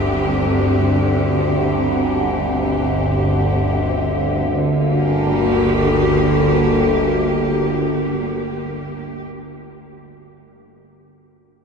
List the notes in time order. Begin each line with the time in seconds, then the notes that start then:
Already playing: G1 D2 G2 D3 C4 G4 F#5
4.51 G1 D2 D3
4.71 A#3
4.90 G4